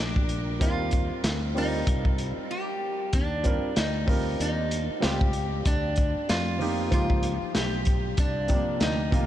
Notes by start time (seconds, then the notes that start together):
Already playing: A#1
0.00 D4
0.16 kick
0.29 closed hi-hat
0.59 D#2 G3 C4 F4 A#4, kick, closed hi-hat
0.91 kick, closed hi-hat
1.10 muted fretless electric bass stroke
1.24 D2, snare, closed hi-hat
1.54 G3 C4 D#4 F4 A#4, open hi-hat
1.87 C2, kick, closed hi-hat
2.05 kick
2.18 closed hi-hat
2.37 muted fretless electric bass stroke
2.51 G4
3.13 D#2 D4, kick, closed hi-hat
3.43 G3 C4 F4 A#4, kick, closed hi-hat
3.63 muted fretless electric bass stroke
3.76 D2 D#4, snare, closed hi-hat
4.06 G3 C4 F4 A#4, kick, open hi-hat
4.40 D#2 D#4, closed hi-hat
4.71 closed hi-hat
4.89 muted fretless electric bass stroke
5.00 C#2 G3 C4 F4 G4 C5, snare, closed hi-hat
5.21 kick
5.33 closed hi-hat
5.65 D2 D4, kick, closed hi-hat
5.96 kick, closed hi-hat
6.16 muted fretless electric bass stroke
6.29 F2 F4, snare, closed hi-hat
6.59 F3 A#3 D#4 G4, open hi-hat
6.91 C#2 F3 A#3 D#4 F4 G4, kick, closed hi-hat
7.10 kick
7.23 closed hi-hat
7.43 muted fretless electric bass stroke
7.55 B1 G4, snare, closed hi-hat
7.85 kick, closed hi-hat
8.17 C2 D4, kick, closed hi-hat
8.48 C3 F3 A#3 D4, kick, closed hi-hat
8.68 muted fretless electric bass stroke
8.80 D2 D#4, snare, closed hi-hat
9.11 C3 F3 A#3 F4, kick, closed hi-hat